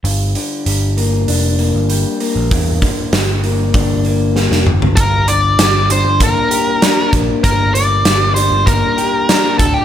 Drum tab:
HH |o-o-o-o-o-o-o-o-|o-o-o-o-o-o-----|x-x-x-x-x-x-x-x-|x-x-x-x-x-x-x-x-|
SD |----------------|----o-------oo--|----o-------o---|----o-------o---|
T2 |----------------|--------------o-|----------------|----------------|
FT |----------------|---------------o|----------------|----------------|
BD |----------------|o-o-----o-------|o-------o-----o-|o-------o-----o-|